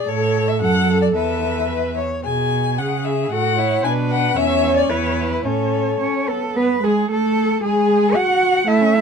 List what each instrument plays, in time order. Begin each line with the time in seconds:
0.08 cello A2, viola A4, violin A4 C#5
0.48 violin E5
0.60 cello F#2, violin A4 F#5, viola A4
1.02 violin D5
1.15 cello E2, violin A4 E5, viola B4
1.70 violin B4
1.98 violin C#5
2.24 cello B2, violin G#4 G#5
2.78 cello C#3, viola G#4, violin G#4 F#5
3.05 violin E5
3.32 cello A2, violin F#4 F#5, viola A4
3.58 violin E4, viola C#5
3.84 cello B2, violin D4 G#5, viola B4
4.10 violin F#5
4.36 cello E2, violin C#4 E5, viola C#5
4.77 violin D5
4.89 cello E2, violin E4 C#5, viola B4
5.32 violin B4
5.45 cello A2, violin C#4 A4, viola C#5
6.00 violin C#4, cello C#5
6.28 violin B3, cello A4
6.56 viola B3, violin B4, cello B4
6.83 viola G#3, violin G#4, cello G#4
7.10 viola A3, cello A4, violin A4
7.63 viola G#3, cello G#4, violin G#4
8.15 viola F#4, violin F#5, cello F#5
8.67 viola A3, violin E4 A5, cello E5
8.81 violin C#4 C#6
8.94 violin E4 A5